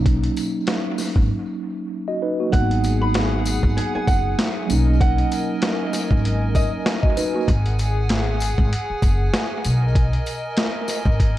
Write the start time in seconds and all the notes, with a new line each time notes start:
Already playing: B1 F#3 A#3 C#4 D#4
0.06 kick, closed hi-hat
0.23 closed hi-hat
0.36 closed hi-hat, tambourine
0.67 snare, closed hi-hat
0.98 snare, open hi-hat, tambourine
1.16 G#1, kick
2.08 F#4 D#5
2.22 D#4 B4
2.40 A#3 F#4
2.50 G#1 F#3 A#3 B3 G#4 F#5 G#5, kick, closed hi-hat
2.56 D#4
2.71 closed hi-hat
2.84 closed hi-hat, tambourine
3.02 B5
3.14 snare, closed hi-hat
3.45 closed hi-hat, tambourine
3.63 G#1, kick
3.77 G#5, closed hi-hat
3.95 G#5, muted upright bass stroke
4.07 F#1 F#5, kick, closed hi-hat, tambourine
4.39 snare, closed hi-hat
4.66 F#3 A#3 A#4 D#5, closed hi-hat, tambourine
4.70 B1 C#4 D#4
5.01 F#5, kick, closed hi-hat
5.18 closed hi-hat
5.31 closed hi-hat, tambourine
5.62 snare, closed hi-hat
5.93 snare, closed hi-hat, tambourine
6.11 G#1, kick
6.25 closed hi-hat
6.55 D#5, kick, closed hi-hat, tambourine
6.86 snare, closed hi-hat
7.03 F#4 D#5, kick
7.17 D#4 B4, closed hi-hat, tambourine
7.35 A#3 F#4
7.48 G#1 G#4 F#5, kick, closed hi-hat
7.66 closed hi-hat
7.79 closed hi-hat, tambourine
8.09 snare, closed hi-hat
8.40 closed hi-hat, tambourine
8.58 G#1, kick
8.73 closed hi-hat
8.90 muted upright bass stroke
9.02 F#1, kick, closed hi-hat, tambourine
9.34 snare, closed hi-hat
9.64 B1 A#4 D#5, closed hi-hat, tambourine
9.95 kick, closed hi-hat
10.13 closed hi-hat
10.26 closed hi-hat, tambourine
10.57 snare, closed hi-hat
10.88 snare, closed hi-hat, tambourine
11.06 G#1, kick
11.20 kick, closed hi-hat